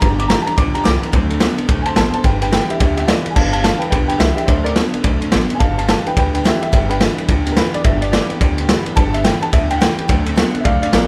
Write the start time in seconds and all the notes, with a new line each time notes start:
0.01 G1 G2 D3 G3 B3 D4 G4 A#5, kick, ride
0.18 G3 B3 D4 G4 D6, ride
0.28 G2 D3 E3 G3 B3 D4 G4 A#5, snare, ride
0.42 A5
0.46 G3 B3 D4 G4 A#5, muted upright bass stroke, ride
0.57 B1 G2 D3 G3 B3 D4 G4 D6, kick, ride
0.74 G3 B3 D4 G4 A#5, muted upright bass stroke, ride
0.84 C2 G2 D3 E3 G3 B3 D4 G4 D6, snare, ride
1.01 G3 B3 D4 G4, muted upright bass stroke, ride
1.12 D2 D3 F#3 A3 C4 D4 A4, kick, ride
1.30 C4 D4 A4, ride
1.40 D3 F#3 B3 C4 D4 A4, snare, ride
1.57 C4 D4 A4, muted upright bass stroke, ride
1.68 B1 D3 F#3 A3 C4 D4 A4, kick, ride
1.82 D4 A4 G#5, ride
1.86 C4 C5 A5
1.95 A1 D3 F#3 B3 C4 D4 A4 C5 A5, snare, ride
2.13 C4 D4 A4 C5 A5, muted upright bass stroke, ride
2.24 G1 G2 D3 G3 B3 D4 G4 B4 G5, kick, ride
2.41 G3 B3 D4 G4 B4 G5, ride
2.51 G2 D3 E3 G3 B3 D4 G4 B4 G5, snare, ride
2.69 G3 B3 D4 G4 E5, muted upright bass stroke, ride
2.79 D2 G2 D3 G3 B3 D4 G4 E5, kick, ride
2.97 G3 B3 D4 G4 E5, ride
3.07 G2 D3 E3 G3 B3 D4 F4 G4 D5, snare, ride
3.25 G3 B3 D4 G4, muted upright bass stroke, ride
3.30 G#5
3.35 G1 G2 D3 G3 B3 D4 G4 F5 A5, kick, crash
3.52 G3 B3 D4 G4 F5 A5, ride
3.62 G2 D3 E3 G3 B3 D4 G4 F5 A5, snare, ride
3.79 D4 G4 B4 G5, muted upright bass stroke, ride
3.83 G3 B3
3.90 B1 G2 D3 G3 B3 D4 G4 B4 G5, kick, ride
4.08 G3 B3 D4 G4 B4 G5, muted upright bass stroke, ride
4.18 C2 G2 D3 E3 G3 B3 D4 G4 E5, snare, ride
4.35 G3 B3 D4 G4 E5, ride
4.45 D2 D3 F#3 A3 C4 D4 A4 C5 E5, kick, ride
4.64 C4 D4 A4 A#4 D5, ride
4.75 D3 F#3 B3 C4 D4 A4, snare, ride
4.94 C4 D4 A4, muted upright bass stroke, ride
5.03 B1 D3 F#3 A3 C4 D4 A4, kick, ride
5.21 C4 D4 A4, ride
5.31 A1 D3 F#3 B3 C4 D4 A4, snare, ride
5.49 C4 D4 A4, muted upright bass stroke, ride
5.55 G#5
5.59 G1 G2 D3 G3 B3 D4 G4 F5 A5, kick, ride
5.77 G3 B3 D4 G4 F5 A5, ride
5.88 G2 D3 E3 G3 B3 D4 G4 F5 A5, snare, ride
6.05 G3 B3 D4 G4 B4 G5, muted upright bass stroke, ride
6.16 D2 G2 D3 G3 B3 D4 G4 B4 G5, kick, ride
6.33 G3 B3 D4 G4 B4 G5, ride
6.44 G2 D3 E3 G3 B3 D4 G4 E5, snare, ride
6.60 G3 B3 D4 G4 E5, muted upright bass stroke, ride
6.71 G1 G2 D3 G3 B3 D4 G4 E5, kick, ride
6.88 G3 B3 D4 G4 B4, ride
7.00 G2 D3 E3 G3 B3 D4 G4, snare, ride
7.17 G3 B3 D4 G4, muted upright bass stroke, ride
7.28 D2 G2 D3 G3 B3 D4 G4, kick, ride
7.45 G3 B3 D4 G4, ride
7.52 A#4
7.56 G2 D3 E3 G3 B3 D4 G4 B4, snare, ride
7.74 G3 B3 D4 G4 D5, muted upright bass stroke, ride
7.84 G1 G2 D3 G3 B3 D4 G4 E5, kick, ride
8.01 G3 B3 D4 G4 D5, ride
8.12 G2 D3 E3 G3 B3 D4 G4 D5, snare, ride
8.30 G3 B3 D4 G4, muted upright bass stroke, ride
8.40 D2 G2 D3 G3 B3 G4, kick, ride
8.58 G3 B3 D4 G4, ride
8.69 G2 D3 E3 G3 B3 D4 G4, snare, ride
8.85 G3 B3 D4 G4, muted upright bass stroke, ride
8.95 G1 G2 D3 G3 B3 D4 G4 A5, kick, ride
9.13 G3 B3 D4 G4 E5, ride
9.24 G2 D3 E3 G3 B3 D4 G4 G5, snare, ride
9.41 G3 B3 D4 G4 A5, muted upright bass stroke, ride
9.52 D2 G2 D3 B3 D4 G4 E5, kick, ride
9.69 G3 B3 D4 G4 G5, ride
9.77 G2 D3 G3 B3 F#5
9.81 G2 E3 D4 G4 G5, snare, ride
9.98 G3 B3 D4 G4, muted upright bass stroke, ride
10.08 D2 D3 F#3 A3 C4 D4 A4, kick, ride
10.25 C4 D4 A4, ride
10.36 D3 F#3 B3 C4 D4 A4, snare, ride
10.53 C4 D4 A4, muted upright bass stroke, ride
10.60 F#3 D5 E5
10.64 B1 D3 A3 C4 D4 A4 F5, kick, ride
10.82 C4 D4 A4 D5 F5, ride
10.92 A1 D3 F#3 B3 C4 D4 A4 A#4 D5, snare, ride